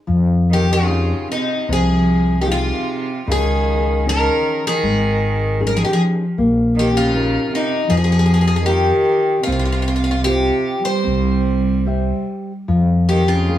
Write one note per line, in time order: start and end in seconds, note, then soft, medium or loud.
0.07 1.13 F2 medium
0.07 0.86 F3 medium
0.50 0.68 D#3 medium
0.50 0.72 G4 medium
0.71 1.27 C#3 medium
0.71 1.27 F4 medium
0.87 1.52 D#4 soft
0.87 1.52 F4 soft
0.87 1.53 G#4 soft
1.32 1.68 C3 medium
1.32 1.72 D#4 medium
1.69 2.72 C2 medium
1.69 2.46 C3 medium
1.69 2.39 F3 medium
1.69 2.41 G#4 medium
2.41 2.48 D#3 soft
2.41 2.48 G4 medium
2.46 3.11 D#4 soft
2.46 3.11 F4 soft
2.46 3.11 G#4 soft
2.51 3.25 C3 medium
2.51 3.31 F4 medium
3.27 4.29 C#2 medium
3.27 4.04 C#3 medium
3.27 4.04 D#3 medium
3.32 4.09 G#4 medium
4.06 4.68 C#4 soft
4.06 4.68 D#4 soft
4.06 4.68 G#4 soft
4.06 4.67 A#4 medium
4.10 4.62 D#3 medium
4.67 5.63 D#3 medium
4.67 5.63 G#4 medium
4.83 5.84 G#1 medium
4.83 5.59 G#3 medium
5.60 6.23 C#4 soft
5.60 6.23 D#4 soft
5.60 6.23 G#4 medium
5.66 5.73 G3 medium
5.66 5.75 A#4 medium
5.74 5.82 F3 medium
5.74 5.84 G#4 medium
5.82 5.89 D#3 medium
5.82 5.93 G4 medium
5.89 5.99 F3 medium
5.89 6.01 G#4 medium
6.38 7.38 A#1 medium
6.38 7.12 A#3 medium
6.75 6.94 D#3 medium
6.79 6.98 G4 medium
6.95 7.48 C#3 medium
6.95 7.55 F4 medium
7.13 7.75 D#4 soft
7.13 7.75 F4 soft
7.13 7.76 A#4 medium
7.51 7.87 C3 medium
7.51 7.93 D#4 medium
7.88 8.92 F2 medium
7.88 8.63 F3 medium
7.88 8.65 F3 medium
7.88 7.96 G#4 medium
7.97 8.03 G#4 medium
8.04 8.11 G#4 medium
8.12 8.18 G#4 medium
8.19 8.25 G#4 medium
8.26 8.33 G#4 soft
8.34 8.40 G#4 medium
8.41 8.46 G#4 soft
8.47 8.55 G#4 medium
8.56 8.64 G#4 medium
8.65 9.41 D#3 medium
8.65 9.31 D#4 soft
8.65 9.31 F4 soft
8.65 9.43 G4 medium
8.65 9.31 A#4 medium
9.43 10.21 C3 medium
9.43 10.23 C4 medium
9.43 9.51 F4 medium
9.48 10.51 C2 medium
9.48 9.58 F4 medium
9.59 9.64 F4 medium
9.65 9.71 F4 soft
9.72 9.81 F4 medium
9.82 9.87 F4 soft
9.88 9.95 F4 medium
9.96 10.03 F4 soft
10.04 10.10 F4 medium
10.11 10.20 F4 medium
10.23 10.80 C3 medium
10.23 10.89 F4 soft
10.23 10.85 G4 medium
10.23 10.89 G4 soft
10.27 10.90 C5 soft
10.84 12.23 G3 medium
10.84 12.23 C5 medium
11.04 12.12 C2 medium
11.04 11.84 C4 medium
11.86 12.51 G4 soft
11.86 12.52 C5 soft
11.86 12.52 E5 soft
12.68 13.58 F2 medium
12.68 13.47 F3 medium
13.09 13.28 D#3 medium
13.09 13.27 G4 medium
13.28 13.58 C#3 medium
13.28 13.58 F4 medium
13.48 13.58 F4 soft
13.48 13.58 G4 soft
13.48 13.58 G#4 soft